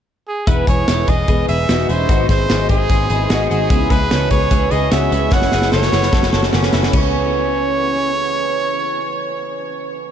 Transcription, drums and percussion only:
0.47 kick loud
0.47 closed hi-hat medium
0.67 kick medium
0.67 closed hi-hat medium
0.88 snare loud
0.88 closed hi-hat medium
1.08 kick medium
1.08 closed hi-hat medium
1.28 kick medium
1.28 closed hi-hat medium
1.48 closed hi-hat medium
1.69 snare loud
1.69 closed hi-hat medium
1.89 closed hi-hat medium
2.09 kick loud
2.09 closed hi-hat medium
2.29 kick medium
2.29 snare soft
2.29 closed hi-hat medium
2.50 snare loud
2.50 closed hi-hat medium
2.69 kick medium
2.69 closed hi-hat medium
2.89 kick medium
2.89 closed hi-hat medium
3.10 closed hi-hat medium
3.30 snare loud
3.30 closed hi-hat medium
3.51 closed hi-hat medium
3.70 kick loud
3.70 closed hi-hat medium
3.90 kick medium
3.90 snare soft
3.90 closed hi-hat medium
4.11 snare loud
4.11 closed hi-hat medium
4.30 kick medium
4.30 closed hi-hat medium
4.51 kick medium
4.51 closed hi-hat medium
4.71 closed hi-hat medium
4.91 snare loud
4.91 closed hi-hat medium
5.12 closed hi-hat medium
5.32 kick loud
5.32 snare medium
5.42 snare soft
5.52 snare medium
5.62 snare soft
5.72 snare medium
5.82 snare medium
5.92 snare medium
6.03 snare medium
6.13 kick medium
6.13 snare medium
6.23 snare medium
6.33 snare medium
6.43 snare medium
6.53 snare medium
6.63 snare medium
6.73 snare medium
6.83 snare medium
6.93 kick loud
6.93 crash medium

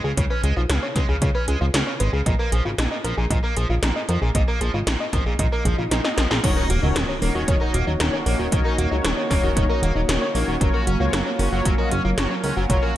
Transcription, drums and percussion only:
0.17 kick loud
0.17 closed hi-hat medium
0.44 closed hi-hat medium
0.70 snare loud
0.70 closed hi-hat medium
0.96 kick loud
0.96 snare soft
0.96 closed hi-hat medium
1.22 kick loud
1.22 closed hi-hat medium
1.48 closed hi-hat medium
1.74 snare loud
1.74 closed hi-hat medium
2.00 closed hi-hat medium
2.26 kick loud
2.26 closed hi-hat medium
2.52 closed hi-hat medium
2.78 snare loud
2.78 closed hi-hat medium
3.05 closed hi-hat medium
3.30 kick loud
3.30 closed hi-hat medium
3.57 closed hi-hat medium
3.83 snare loud
3.83 closed hi-hat medium
4.09 closed hi-hat medium
4.35 kick loud
4.35 closed hi-hat medium
4.61 closed hi-hat medium
4.87 snare loud
4.87 closed hi-hat medium
5.13 kick loud
5.13 snare soft
5.13 closed hi-hat medium
5.39 kick loud
5.39 closed hi-hat medium
5.65 kick medium
5.65 closed hi-hat medium
5.91 snare medium
5.91 closed hi-hat medium
6.05 snare medium
6.18 snare medium
6.18 closed hi-hat medium
6.31 snare medium
6.44 kick loud
6.44 closed hi-hat loud
6.44 crash loud
6.70 closed hi-hat medium
6.96 snare loud
6.96 closed hi-hat loud
7.22 open hi-hat medium
7.48 kick loud
7.48 closed hi-hat loud
7.74 closed hi-hat medium
8.00 snare loud
8.00 closed hi-hat loud
8.26 open hi-hat medium
8.52 kick loud
8.52 closed hi-hat loud
8.78 closed hi-hat medium
9.05 snare loud
9.05 closed hi-hat loud
9.30 kick loud
9.30 snare soft
9.30 open hi-hat medium
9.57 kick loud
9.57 closed hi-hat loud
9.83 closed hi-hat medium
10.09 snare loud
10.09 closed hi-hat loud
10.35 open hi-hat medium
10.61 kick loud
10.61 closed hi-hat medium
10.87 closed hi-hat medium
11.13 snare loud
11.13 closed hi-hat loud
11.39 open hi-hat medium
11.65 kick loud
11.65 closed hi-hat loud
11.91 closed hi-hat medium
12.18 snare loud
12.18 closed hi-hat loud
12.44 open hi-hat medium
12.70 kick loud
12.70 closed hi-hat medium

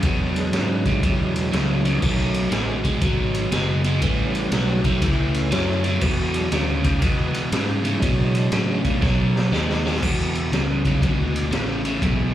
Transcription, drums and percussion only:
0.03 kick loud
0.03 ride loud
0.36 ride medium
0.53 snare loud
0.53 ride medium
0.85 kick medium
0.85 ride medium
1.03 kick loud
1.03 ride loud
1.36 ride medium
1.53 snare loud
1.53 ride medium
1.85 ride medium
2.02 kick loud
2.02 crash medium
2.34 ride medium
2.52 snare loud
2.52 ride loud
2.85 kick medium
2.85 ride medium
3.01 kick loud
3.01 ride loud
3.34 ride medium
3.52 snare loud
3.52 ride loud
3.84 ride medium
4.02 kick loud
4.02 ride loud
4.35 ride medium
4.52 snare loud
4.52 ride loud
4.84 kick medium
4.84 ride medium
5.02 kick loud
5.02 ride medium
5.34 ride medium
5.52 snare loud
5.52 ride loud
5.84 ride medium
6.01 kick loud
6.01 crash loud
6.34 ride medium
6.52 snare loud
6.52 ride loud
6.84 kick medium
6.84 ride medium
7.02 kick loud
7.02 ride loud
7.34 ride medium
7.52 snare loud
7.52 ride loud
7.85 ride medium
8.02 kick loud
8.02 ride loud
8.35 ride medium
8.52 snare loud
8.52 ride loud
8.84 kick medium
8.84 ride medium
9.02 kick loud
9.02 snare medium
9.36 snare medium
9.53 snare medium
9.69 snare medium
9.86 snare loud
9.95 snare medium
10.02 kick loud
10.02 crash loud
10.35 ride medium
10.53 snare loud
10.53 ride loud
10.85 kick medium
10.85 ride medium
11.02 kick loud
11.02 ride loud
11.36 ride medium
11.52 snare loud
11.52 ride loud
11.85 ride medium
12.02 kick loud
12.02 ride loud

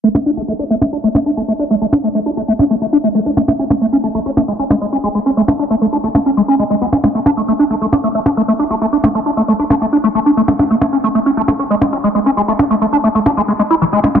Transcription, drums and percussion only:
0.15 percussion blips medium
0.81 percussion blips soft
1.15 percussion blips medium
1.93 percussion blips medium
2.59 percussion blips soft
3.37 percussion blips soft
3.48 percussion blips medium
3.70 percussion blips medium
4.37 percussion blips medium
4.70 percussion blips medium
5.48 percussion blips medium
6.15 percussion blips medium
6.93 percussion blips soft
7.04 percussion blips medium
7.26 percussion blips medium
7.93 percussion blips medium
8.26 percussion blips medium
9.04 percussion blips medium
9.70 percussion blips medium
10.48 percussion blips medium
10.59 percussion blips medium
10.82 percussion blips medium
11.48 percussion blips medium
11.82 percussion blips medium
12.59 percussion blips medium
13.26 percussion blips medium
14.04 percussion blips medium
14.15 percussion blips medium

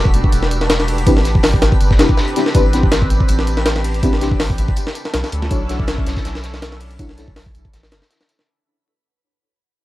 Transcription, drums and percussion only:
0.05 kick medium
0.14 closed hi-hat medium
0.14 tambourine medium
0.24 kick medium
0.32 closed hi-hat medium
0.32 tambourine medium
0.43 snare medium
0.51 closed hi-hat medium
0.51 tambourine medium
0.61 snare medium
0.70 snare loud
0.70 closed hi-hat medium
0.70 tambourine loud
0.80 snare medium
0.88 closed hi-hat medium
0.88 open hi-hat medium
0.98 closed hi-hat soft
1.07 kick loud
1.07 closed hi-hat medium
1.07 tambourine loud
1.17 snare medium
1.25 snare soft
1.25 closed hi-hat medium
1.25 tambourine medium
1.35 kick loud
1.43 snare loud
1.43 open hi-hat medium
1.43 tambourine medium
1.54 kick medium
1.62 snare loud
1.62 closed hi-hat medium
1.62 tambourine medium
1.72 kick medium
1.72 closed hi-hat soft
1.81 closed hi-hat medium
1.81 tambourine medium
1.91 kick medium
1.91 snare soft
1.99 snare loud
1.99 closed hi-hat medium
1.99 tambourine medium
2.09 kick medium
2.17 snare loud
2.17 tambourine medium
2.28 closed hi-hat soft
2.36 snare soft
2.36 closed hi-hat medium
2.36 tambourine medium
2.46 snare soft
2.46 snare medium
2.55 kick loud
2.55 closed hi-hat medium
2.55 tambourine loud
2.73 snare soft
2.73 closed hi-hat medium
2.73 tambourine medium
2.83 kick loud
2.92 snare loud
2.92 closed hi-hat medium
2.92 tambourine medium
3.02 kick medium
3.10 closed hi-hat medium
3.10 tambourine medium
3.20 kick medium
3.28 closed hi-hat medium
3.28 tambourine medium
3.39 snare soft
3.47 closed hi-hat medium
3.47 tambourine medium
3.57 snare medium
3.66 snare loud
3.66 closed hi-hat medium
3.66 tambourine medium
3.76 snare medium
3.84 closed hi-hat medium
3.84 open hi-hat medium
3.94 closed hi-hat soft
4.03 kick loud
4.03 closed hi-hat medium
4.03 tambourine medium
4.13 snare medium
4.21 snare medium
4.21 closed hi-hat medium
4.21 tambourine medium
4.32 kick loud
4.40 snare loud
4.40 open hi-hat medium
4.40 tambourine medium
4.50 kick medium
4.58 closed hi-hat medium
4.58 tambourine medium
4.68 kick medium
4.68 closed hi-hat soft
4.76 closed hi-hat medium
4.76 tambourine medium
4.87 snare medium
4.87 snare soft
4.95 closed hi-hat medium
4.95 tambourine medium
5.05 snare soft
5.14 snare loud
5.14 snare soft
5.14 closed hi-hat medium
5.14 tambourine medium
5.24 snare medium
5.24 tambourine medium
5.32 closed hi-hat medium
5.42 snare soft
5.51 kick loud
5.51 closed hi-hat medium
5.51 tambourine medium
5.69 snare soft
5.69 closed hi-hat medium
5.69 tambourine medium
5.80 kick loud
5.87 snare loud
5.87 closed hi-hat medium
5.87 tambourine medium
5.98 kick medium
6.06 snare loud
6.06 closed hi-hat medium
6.06 tambourine medium
6.16 kick medium
6.16 snare loud
6.16 tambourine medium
6.25 snare medium
6.25 closed hi-hat medium
6.25 tambourine medium
6.35 snare medium
6.35 snare loud
6.35 tambourine medium
6.43 snare loud
6.43 closed hi-hat medium
6.43 tambourine medium
6.54 snare medium
6.54 snare loud
6.54 tambourine medium
6.62 snare loud
6.62 closed hi-hat medium
6.72 snare medium
6.80 closed hi-hat medium
6.80 open hi-hat medium
6.91 closed hi-hat soft
6.99 kick loud
6.99 closed hi-hat medium
6.99 tambourine medium
7.09 snare medium
7.18 snare soft
7.18 closed hi-hat medium
7.18 tambourine medium
7.28 kick loud
7.36 snare loud
7.36 open hi-hat medium
7.36 tambourine medium
7.46 kick loud
7.55 closed hi-hat medium
7.55 tambourine medium
7.65 kick medium
7.65 closed hi-hat soft
7.73 snare loud
7.73 closed hi-hat medium
7.73 tambourine medium
7.83 snare loud
7.83 snare medium
7.83 tambourine medium
7.92 snare loud
7.92 closed hi-hat medium
7.92 tambourine medium
8.02 snare loud
8.02 snare soft
8.02 tambourine medium
8.10 snare loud
8.10 closed hi-hat medium
8.10 tambourine medium
8.20 snare soft
8.20 snare loud
8.20 tambourine medium
8.28 snare soft
8.28 closed hi-hat medium
8.28 tambourine medium
8.39 snare soft
8.39 snare medium

